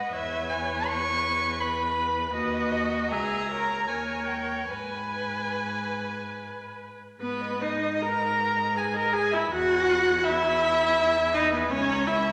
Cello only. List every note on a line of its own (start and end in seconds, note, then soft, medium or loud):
0.13 2.30 E2 medium
2.34 3.13 D#2 medium
3.11 3.89 C#2 medium
3.87 4.71 D#2 medium
4.69 6.99 G#2 medium
7.20 9.46 G#2 medium
9.50 11.67 E2 loud
11.71 12.32 C#2 loud